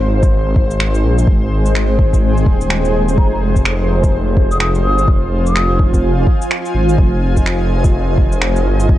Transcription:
Already playing: detuned saw bass G#1, ambient pad G#3 G#4 C5 D#5 F5
0.23 kick, shaker
0.56 detuned saw bass G#1, kick
0.71 shaker
0.80 finger snap
0.95 shaker
1.04 detuned saw bass A#1
1.10 ambient pad G5
1.18 shaker
1.27 detuned saw bass G#1, kick
1.66 shaker
1.75 finger snap
1.99 kick
2.13 kick, shaker
2.37 shaker
2.46 detuned saw bass D#1, kick
2.61 detuned saw bass D#1, shaker
2.70 finger snap
2.85 shaker
3.09 shaker
3.18 detuned saw bass F1, ambient pad F4, flute A#5, kick
3.33 flute A#5
3.56 kick, shaker
3.65 finger snap
3.85 ambient pad G#5
4.04 kick, shaker
4.25 ambient pad D#5
4.37 detuned saw bass F1, kick
4.51 flute D#6, shaker
4.60 flute D#6, finger snap
4.75 shaker
4.84 detuned saw bass G1, flute D#6
4.99 shaker
5.08 detuned saw bass F1, kick
5.46 flute D#6, shaker
5.56 finger snap
5.79 kick
5.94 kick, shaker
6.27 kick
6.42 shaker
6.51 finger snap
6.65 shaker
6.75 detuned saw bass G#1
6.89 shaker
6.98 detuned saw bass F1, kick
7.37 kick, shaker
7.46 finger snap
7.84 kick, shaker
8.18 detuned saw bass F1, kick
8.32 shaker
8.41 finger snap
8.56 shaker
8.66 detuned saw bass G1
8.80 shaker
8.89 detuned saw bass F1, kick

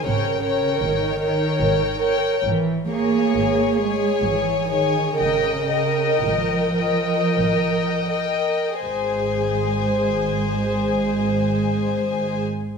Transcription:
0.05 double bass section G#1, cello section C#3, viola section A#4, violin section C#5 G5
0.43 viola section A#4, violin section C#5 G5
0.82 double bass section G#1, cello section D#3
1.20 viola section A#4, violin section C#5 G5
1.61 double bass section G#1
1.99 viola section A#4, violin section C#5 G5
2.44 double bass section G#1, cello section E3
2.89 cello section A#3, viola section G#4, violin section C#5 G#5
3.34 double bass section G#1
3.78 cello section G#3, viola section G#4, violin section C#5 G#5
4.23 double bass section G#1, cello section E3
4.69 cello section D#3, viola section G#4, violin section C#5 G#5
5.18 double bass section G#1, cello section C#3, viola section A#4, violin section D#5 G5
5.68 viola section A#4, violin section D#5 G5
6.21 double bass section G#1, cello section F3
6.77 viola section A#4, violin section D#5 G5
7.40 double bass section G#1
8.11 viola section A#4, violin section D#5 G5
8.82 double bass section G#1, cello section G#3, viola section G#4, violin section C5 G#5

